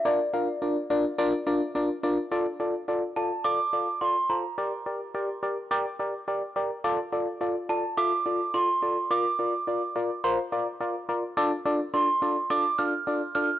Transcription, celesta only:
\new Staff \with { instrumentName = "Celesta" } { \time 4/4 \key d \minor \tempo 4 = 106 d''2. r4 | r4. a''8 d'''4 c'''8 bes''8~ | bes''2~ bes''8 r4. | r4. a''8 d'''4 c'''4 |
d'''2.~ d'''8 r8 | r4 c'''4 d'''8 f'''4 f'''8 | }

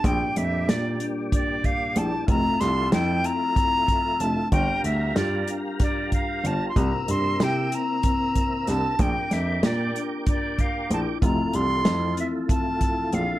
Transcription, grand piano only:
\new Staff \with { instrumentName = "Grand piano" } { \clef bass \time 7/8 \key bes \lydian \tempo 4 = 94 bes,,16 r16 f,8 bes,8 r4. bes,,16 r16 | f,,16 r16 c,8 f,8 r4. f,,16 r16 | g,,16 r16 d,8 g,8 r4. g,,16 r16 | c,16 r16 g,8 c8 r4. c,16 r16 |
bes,,16 r16 f,8 bes,8 r4. bes,,16 r16 | f,,16 r16 c,8 f,8 r4. bes,,16 r16 | }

